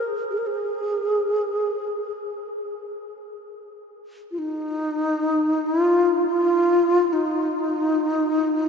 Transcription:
0.30 0.39 G#4 soft
0.38 0.48 A#4 soft
0.47 2.29 G#4 medium
4.31 4.40 F4 medium
4.38 5.68 D#4 medium
5.66 6.25 F4 medium
6.27 7.14 F4 medium
7.13 8.69 D#4 medium

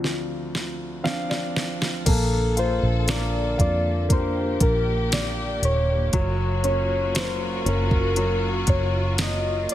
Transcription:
0.00 2.02 D2 medium
0.00 1.03 F3 soft
0.00 1.04 C4 soft
0.00 1.04 D4 soft
0.00 1.56 F4 medium
0.04 snare soft
0.55 snare soft
1.03 2.03 F3 soft
1.03 2.03 C4 soft
1.03 2.03 D4 soft
1.03 1.28 F5 medium
1.03 snare medium
1.30 2.02 D5 soft
1.30 snare medium
1.56 snare medium
1.82 snare medium
2.06 2.79 A#1 medium
2.06 6.10 D3 medium
2.06 3.06 A#3 medium
2.06 9.74 A#3 medium
2.06 4.08 A4 medium
2.06 2.61 A4 medium
2.06 kick medium
2.06 closed hi-hat medium
2.06 crash medium
2.57 3.56 F4 soft
2.57 3.11 C5 medium
2.57 closed hi-hat medium
2.83 3.55 A#1 medium
3.08 4.07 A#3 medium
3.08 3.60 D5 medium
3.08 snare loud
3.08 closed hi-hat medium
3.58 4.57 F2 medium
3.58 5.58 F4 medium
3.58 4.14 D5 medium
3.58 kick medium
3.58 closed hi-hat medium
4.09 6.09 A#3 medium
4.09 6.12 G4 medium
4.09 4.64 C5 medium
4.09 kick medium
4.09 closed hi-hat medium
4.60 5.58 A#1 medium
4.60 5.15 A#4 medium
4.60 kick medium
4.60 closed hi-hat medium
5.12 5.66 D5 loud
5.12 snare loud
5.12 closed hi-hat medium
5.62 6.10 D#1 medium
5.62 6.65 C#5 loud
5.62 closed hi-hat medium
6.13 7.62 F#1 medium
6.13 7.13 F#3 medium
6.13 9.74 F4 medium
6.13 9.74 F#4 medium
6.13 kick loud
6.13 closed hi-hat medium
6.64 7.64 C#4 medium
6.64 7.18 C#5 medium
6.64 closed hi-hat medium
7.14 8.15 F#3 soft
7.14 7.70 C5 medium
7.14 snare loud
7.14 closed hi-hat medium
7.65 8.64 F#1 loud
7.65 9.65 C#4 medium
7.65 8.71 A#4 loud
7.65 closed hi-hat medium
7.91 kick medium
8.16 9.74 F#3 medium
8.16 closed hi-hat medium
8.67 9.65 F#1 medium
8.67 9.23 C#5 medium
8.67 kick medium
8.67 closed hi-hat medium
9.18 9.74 D#5 loud
9.18 snare loud
9.18 closed hi-hat medium
9.69 closed hi-hat medium

